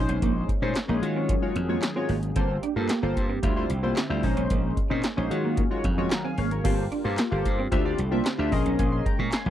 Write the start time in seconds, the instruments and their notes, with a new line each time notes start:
Already playing: analog polysynth G#3 C#4 D#4 C5, analog synth pad G#3 A#3 C#4
0.09 slap bass B1, clean electric guitar C#4, closed hi-hat
0.22 slap bass A#1, clean electric guitar A#3, kick, closed hi-hat
0.49 muted clean electric guitar stroke, kick, closed hi-hat
0.62 slap bass A#2, analog polysynth G#3 C#4 D#4 C5, clean electric guitar G#3
0.75 snare, clap, closed hi-hat
0.88 slap bass A#1, analog polysynth G#3 C#4 D#4 G#4, clean electric guitar A#3
1.02 analog synth pad D#3 F#3 G#4, slap bass D#3, analog polysynth G#3 F4 F#4 C#5, muted clean electric guitar stroke, closed hi-hat
1.16 clean electric guitar C4
1.29 clean electric guitar C#4, kick, closed hi-hat
1.42 analog polysynth G#3 F4 F#4 C#5
1.56 slap bass F2, muted clean electric guitar stroke, closed hi-hat
1.69 analog polysynth G#3 F4 F#4 C#5, clean electric guitar A#3
1.82 muted clean electric guitar stroke, snare, clap, closed hi-hat
1.96 analog polysynth G#3 F4 F#4 C#5, clean electric guitar C4
2.09 slap bass G#1, clean electric guitar A#3, open hi-hat
2.23 closed hi-hat
2.35 slap bass G1, analog polysynth A#3 F4 A4 C5, clean electric guitar C4, analog synth pad G4, kick, closed hi-hat
2.63 clean electric guitar D4, closed hi-hat
2.76 slap bass G2, analog polysynth A#3 F4 A4 C5, muted clean electric guitar stroke
2.89 clean electric guitar A#3, snare, clap, closed hi-hat
3.02 slap bass G1, analog polysynth A#3 F4 A4 C5, muted clean electric guitar stroke
3.17 slap bass G2, kick, closed hi-hat
3.30 clean electric guitar C4
3.43 slap bass D2, analog synth pad D3 A3 C4 E4, analog polysynth G3 E4 F4 C5, clean electric guitar D4, kick, closed hi-hat
3.56 analog polysynth G3 E4 F4 C5, muted clean electric guitar stroke
3.70 slap bass C2, closed hi-hat
3.83 analog polysynth G3 E4 F4 C5, clean electric guitar A#3
3.96 clean electric guitar C4, snare, clap, closed hi-hat
4.10 slap bass D2, analog polysynth G3 E4 F4 C5
4.23 slap bass A#1, analog synth pad G#3 A#3 C#4, analog polysynth G#3 C#4 D#4 C5, muted clean electric guitar stroke, kick, open hi-hat
4.37 slap bass B1, clean electric guitar C#4, closed hi-hat
4.50 slap bass A#1, clean electric guitar A#3, kick, closed hi-hat
4.77 muted clean electric guitar stroke, kick, closed hi-hat
4.90 slap bass A#2, analog polysynth G#3 C#4 D#4 C5, clean electric guitar C4
5.03 snare, clap, closed hi-hat
5.17 slap bass A#1, analog polysynth G#3 C#4 D#4 C5, clean electric guitar C#4
5.30 analog synth pad D#3 F#3 G#4 F5, slap bass D#3, analog polysynth G#3 F4 F#4 C#5, muted clean electric guitar stroke, closed hi-hat
5.44 clean electric guitar A#3
5.57 clean electric guitar A#3, kick, closed hi-hat
5.71 analog polysynth G#3 F4 F#4 C#5
5.84 slap bass F2, muted clean electric guitar stroke, kick, closed hi-hat
5.97 analog polysynth G#3 F4 F#4 C#5, clean electric guitar C#4
6.11 analog polysynth F#5 A#5, muted clean electric guitar stroke, snare, clap, closed hi-hat
6.24 clean electric guitar C4, analog polysynth F5 G#5
6.38 slap bass G#1, clean electric guitar A#3, analog polysynth C#5 F5, open hi-hat
6.51 analog polysynth A#4 C#5, closed hi-hat
6.64 slap bass G1, analog polysynth A#3 F4 G4 A4 C5, analog synth pad A#3 F4 G4, clean electric guitar C4, kick, closed hi-hat, crash
6.92 clean electric guitar D4, closed hi-hat
7.04 slap bass G2, analog polysynth A#3 F4 G4 A4 C5, muted clean electric guitar stroke
7.18 clean electric guitar A#3, snare, clap, closed hi-hat
7.31 slap bass G1, analog polysynth A#3 F4 G4 A4 C5, muted clean electric guitar stroke
7.45 slap bass G2, kick, closed hi-hat
7.59 clean electric guitar C4
7.71 slap bass D2, analog synth pad D3 A3 C4 E4, analog polysynth D4 F4 G4 C5 E5, clean electric guitar D4, kick, closed hi-hat
7.85 analog polysynth D4 F4 G4 C5 D5, muted clean electric guitar stroke
7.98 slap bass C2, closed hi-hat
8.11 clean electric guitar A#3, analog polysynth D4 F4 G4 C5 E5
8.25 clean electric guitar C4, snare, clap, closed hi-hat
8.38 slap bass D2, analog polysynth D4 F4 G4 C5 E5
8.51 slap bass A#1, analog synth pad G#3 A#3 C#4, analog polysynth C#4 G#4 A#4 C5 D#5, muted clean electric guitar stroke, kick, open hi-hat
8.66 slap bass B1, clean electric guitar C#4, closed hi-hat
8.79 slap bass A#1, clean electric guitar A#3, analog polysynth F5 G#5, kick, closed hi-hat
8.92 analog polysynth G#5 C6
9.06 analog polysynth G5 A#5, muted clean electric guitar stroke, kick, closed hi-hat
9.19 slap bass A#2, clean electric guitar G#3, analog polysynth A#5 C#6
9.32 analog polysynth G#5 C6, snare, clap, closed hi-hat
9.46 slap bass A#1, clean electric guitar A#3, analog polysynth F5 G#5